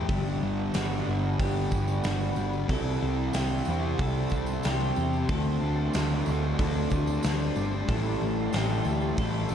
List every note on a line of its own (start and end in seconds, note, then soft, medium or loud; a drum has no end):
0.00 5.25 G3 medium
0.00 0.08 G4 medium
0.08 0.35 G1 medium
0.08 0.73 G2 medium
0.08 0.43 D3 medium
0.08 0.40 G3 loud
0.08 2.70 B3 medium
0.08 2.70 D4 medium
0.08 0.77 G4 medium
0.08 2.67 D5 medium
0.08 2.67 F#5 medium
0.08 2.67 B5 medium
0.08 kick loud
0.08 open hi-hat soft
0.41 0.69 G1 medium
0.41 0.75 D3 medium
0.41 0.77 G3 medium
0.74 1.01 G1 loud
0.74 1.37 G2 medium
0.74 1.07 D3 medium
0.74 1.05 G3 medium
0.74 1.39 F#4 medium
0.74 snare loud
0.74 open hi-hat medium
0.74 tambourine medium
1.06 1.34 G1 medium
1.06 1.39 D3 medium
1.06 1.41 G3 medium
1.38 1.66 G1 medium
1.38 2.02 G2 medium
1.38 1.73 D3 loud
1.38 1.71 G3 loud
1.38 2.04 G4 medium
1.38 kick loud
1.38 open hi-hat medium
1.38 tambourine soft
1.71 1.98 G1 medium
1.71 2.04 D3 medium
1.71 2.07 G3 medium
1.71 kick medium
1.71 tambourine medium
1.88 tambourine medium
2.04 2.31 G1 medium
2.04 2.67 G2 medium
2.04 2.38 D3 medium
2.04 2.36 G3 medium
2.04 2.69 F#4 medium
2.04 snare loud
2.04 open hi-hat medium
2.04 tambourine medium
2.20 tambourine soft
2.36 2.63 G1 medium
2.36 2.68 D3 medium
2.36 2.70 G3 medium
2.36 tambourine medium
2.53 tambourine soft
2.68 2.95 C2 medium
2.68 3.32 C3 medium
2.68 3.04 G3 medium
2.68 3.01 C4 loud
2.68 5.30 E4 medium
2.68 3.34 A4 medium
2.68 5.27 E5 medium
2.68 9.55 A5 medium
2.68 9.55 C6 loud
2.68 kick loud
2.68 open hi-hat medium
3.01 3.28 C2 medium
3.01 3.36 G3 medium
3.01 3.37 C4 medium
3.33 3.61 C2 medium
3.33 3.98 C3 medium
3.33 3.70 G3 medium
3.33 3.99 G4 medium
3.33 snare loud
3.33 open hi-hat medium
3.33 tambourine medium
3.37 3.66 C4 medium
3.65 3.93 E2 medium
3.65 4.02 C4 medium
3.65 tambourine medium
3.70 4.00 G3 medium
3.98 4.25 C2 medium
3.98 4.63 C3 medium
3.98 4.35 G3 medium
3.98 4.64 A4 medium
3.98 kick loud
3.98 open hi-hat medium
3.98 tambourine soft
4.02 4.31 C4 loud
4.30 4.58 C2 medium
4.30 4.67 C4 medium
4.30 kick medium
4.30 tambourine medium
4.35 4.66 G3 medium
4.46 tambourine medium
4.63 4.91 C2 medium
4.63 5.27 C3 medium
4.63 5.00 G3 medium
4.63 5.29 G4 medium
4.63 snare loud
4.63 open hi-hat medium
4.63 tambourine medium
4.67 4.96 C4 medium
4.80 tambourine soft
4.96 5.23 E2 medium
4.96 5.31 G3 medium
4.96 5.32 C4 medium
4.96 tambourine medium
5.13 tambourine soft
5.28 5.55 D2 loud
5.28 5.93 D3 medium
5.28 9.55 G3 medium
5.28 5.64 A3 medium
5.28 7.89 C4 medium
5.28 7.89 F#4 medium
5.28 6.44 A4 loud
5.28 7.85 D5 medium
5.28 kick loud
5.28 open hi-hat medium
5.33 5.60 D4 loud
5.61 5.88 D2 loud
5.61 5.96 A3 medium
5.61 5.97 D4 medium
5.93 6.20 D2 medium
5.93 6.59 D3 medium
5.93 6.30 A3 medium
5.93 snare loud
5.93 open hi-hat medium
5.93 tambourine medium
5.98 6.26 D4 medium
6.26 6.53 D2 medium
6.26 6.62 D4 medium
6.26 tambourine medium
6.31 6.61 A3 medium
6.59 6.85 D2 medium
6.59 7.23 D3 medium
6.59 6.95 A3 medium
6.59 7.73 A4 medium
6.59 kick loud
6.59 open hi-hat medium
6.59 tambourine soft
6.63 6.91 D4 medium
6.90 7.17 D2 medium
6.90 7.27 D4 medium
6.90 kick medium
6.90 tambourine medium
6.96 7.26 A3 medium
7.07 tambourine medium
7.23 7.50 D2 medium
7.23 7.87 D3 medium
7.23 7.60 A3 medium
7.23 snare loud
7.23 open hi-hat medium
7.23 tambourine medium
7.28 7.56 D4 medium
7.40 tambourine soft
7.56 7.82 G1 medium
7.56 7.87 D4 medium
7.56 tambourine medium
7.61 7.92 A3 medium
7.72 tambourine soft
7.88 8.15 A1 medium
7.88 8.52 A2 medium
7.88 9.55 C4 medium
7.88 9.55 E4 medium
7.88 8.53 A4 loud
7.88 9.55 E5 medium
7.88 kick loud
7.88 open hi-hat medium
7.88 tambourine soft
7.92 8.25 E3 loud
7.92 8.21 A3 medium
8.21 8.48 A1 medium
8.21 8.56 A3 medium
8.21 tambourine soft
8.26 8.55 E3 medium
8.53 8.79 A1 medium
8.53 9.17 A2 medium
8.53 8.88 E3 medium
8.53 9.18 G4 medium
8.53 snare loud
8.53 open hi-hat medium
8.53 tambourine medium
8.57 8.85 A3 medium
8.69 tambourine soft
8.85 9.11 D2 medium
8.85 9.21 A3 medium
8.85 tambourine medium
8.90 9.19 E3 medium
9.01 tambourine soft
9.17 9.44 A1 medium
9.17 9.55 A2 medium
9.17 9.54 E3 loud
9.17 9.55 A4 medium
9.17 kick loud
9.17 open hi-hat medium
9.17 tambourine soft
9.22 9.50 A3 medium
9.49 9.55 A1 medium
9.49 9.55 A3 medium
9.49 tambourine medium